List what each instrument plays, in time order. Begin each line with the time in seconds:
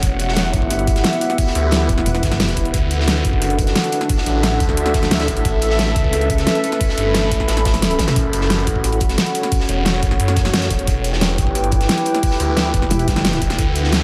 Already playing: ambient pad C#5 F#5
0.03 detuned saw bass E1, analog synth pad B3 E4 G4 E5, ambient pad E4, kick, closed hi-hat
0.19 ambient pad B4, closed hi-hat
0.28 snare
0.35 snare, closed hi-hat
0.45 closed hi-hat
0.54 detuned saw bass G1, kick, closed hi-hat
0.62 kick
0.70 snare, closed hi-hat
0.79 closed hi-hat
0.87 kick, closed hi-hat
0.96 snare, closed hi-hat
1.04 snare, closed hi-hat
1.13 closed hi-hat
1.21 closed hi-hat
1.30 snare, closed hi-hat
1.38 kick, closed hi-hat, open hi-hat
1.47 snare
1.55 detuned saw bass D2, closed hi-hat
1.71 snare, closed hi-hat
1.89 detuned saw bass E1, kick, closed hi-hat
1.98 kick, snare
2.06 wobble bass E1, closed hi-hat
2.15 snare, closed hi-hat
2.23 wobble bass G1, kick, snare, closed hi-hat
2.31 snare, closed hi-hat
2.40 snare, closed hi-hat
2.48 snare, closed hi-hat
2.56 detuned saw bass E1, kick, closed hi-hat
2.65 closed hi-hat
2.74 detuned saw bass D2, ambient pad D4, analog synth pad D4 F#4 A4 F#5, kick, closed hi-hat
2.86 ambient pad A4
2.91 closed hi-hat
2.95 ambient pad E5
3.00 snare
3.08 snare, closed hi-hat
3.16 closed hi-hat
3.24 detuned saw bass F#1, kick, closed hi-hat
3.33 kick
3.42 snare, closed hi-hat
3.50 closed hi-hat
3.59 kick, closed hi-hat
3.67 snare, closed hi-hat
3.75 snare, closed hi-hat
3.84 closed hi-hat
3.92 closed hi-hat
4.01 snare, closed hi-hat
4.09 kick, closed hi-hat, open hi-hat
4.18 snare
4.26 detuned saw bass A1, closed hi-hat
4.43 snare, closed hi-hat
4.60 detuned saw bass D2, kick, closed hi-hat
4.69 kick, snare
4.77 detuned saw bass D2, closed hi-hat
4.86 snare, closed hi-hat
4.94 kick, snare, closed hi-hat
5.03 snare, closed hi-hat
5.11 snare, closed hi-hat
5.15 snare, closed hi-hat
5.20 snare, closed hi-hat
5.28 detuned saw bass A1, kick, closed hi-hat
5.37 closed hi-hat
5.45 detuned saw bass A1, analog synth pad C#4 B4 E5, kick, closed hi-hat
5.62 closed hi-hat
5.70 snare
5.79 ambient pad B5, snare, closed hi-hat
5.87 closed hi-hat
5.96 detuned saw bass C#2, kick, closed hi-hat
6.04 kick
6.13 snare, closed hi-hat
6.21 closed hi-hat
6.30 kick, closed hi-hat
6.38 snare, closed hi-hat
6.46 snare, closed hi-hat
6.55 closed hi-hat
6.64 closed hi-hat
6.72 snare, closed hi-hat
6.81 kick, closed hi-hat, open hi-hat
6.89 snare
6.97 detuned saw bass G1, closed hi-hat
7.14 snare, closed hi-hat
7.31 detuned saw bass A1, kick, closed hi-hat
7.40 kick, snare
7.48 detuned saw bass A1, snare, closed hi-hat
7.57 snare, closed hi-hat
7.65 kick, snare, closed hi-hat
7.73 snare, closed hi-hat
7.82 snare, closed hi-hat
7.90 closed hi-hat
7.99 kick, snare, closed hi-hat, high tom
8.07 snare, closed hi-hat, mid tom
8.16 detuned saw bass F#1, analog synth pad F#4 F#5, kick, closed hi-hat
8.26 ambient pad C#5
8.33 closed hi-hat
8.41 snare
8.50 snare, closed hi-hat
8.59 closed hi-hat
8.67 detuned saw bass A1, kick, closed hi-hat
8.76 kick
8.84 snare, closed hi-hat
8.93 closed hi-hat
9.00 kick, closed hi-hat
9.09 snare, closed hi-hat
9.18 snare, closed hi-hat
9.26 closed hi-hat
9.35 closed hi-hat
9.43 snare, closed hi-hat
9.51 kick, closed hi-hat, open hi-hat
9.60 snare
9.69 detuned saw bass E1, closed hi-hat
9.85 snare, closed hi-hat
10.02 detuned saw bass F#1, kick, closed hi-hat
10.11 kick, snare
10.20 detuned saw bass F#2, closed hi-hat
10.28 snare, closed hi-hat
10.36 kick, snare, closed hi-hat
10.45 snare, closed hi-hat
10.54 snare, closed hi-hat
10.57 snare, closed hi-hat
10.62 snare, closed hi-hat
10.70 detuned saw bass E1, kick, closed hi-hat
10.79 closed hi-hat
10.87 detuned saw bass E1, ambient pad E4, analog synth pad E4 G4 B4 G5, kick, closed hi-hat
10.92 ambient pad B4
11.04 closed hi-hat
11.13 snare
11.21 snare, closed hi-hat
11.29 closed hi-hat
11.38 detuned saw bass G1, kick, closed hi-hat
11.47 kick
11.55 snare, closed hi-hat
11.64 closed hi-hat
11.71 kick, closed hi-hat
11.81 snare, closed hi-hat
11.89 snare, closed hi-hat
11.98 closed hi-hat
12.05 closed hi-hat
12.15 snare, closed hi-hat
12.23 kick, closed hi-hat, open hi-hat
12.31 snare
12.40 detuned saw bass D2, closed hi-hat
12.57 snare, closed hi-hat
12.74 detuned saw bass E1, kick, closed hi-hat
12.82 kick, snare
12.90 wobble bass E1, closed hi-hat
12.99 closed hi-hat
13.08 wobble bass G1, kick, snare, closed hi-hat
13.16 snare, closed hi-hat
13.24 snare, closed hi-hat
13.33 snare, closed hi-hat
13.42 detuned saw bass E1, kick, closed hi-hat
13.50 snare, closed hi-hat
13.58 detuned saw bass D2, analog synth pad D4 F#4 A4 F#5, kick, closed hi-hat
13.76 closed hi-hat
13.84 snare
13.92 snare, closed hi-hat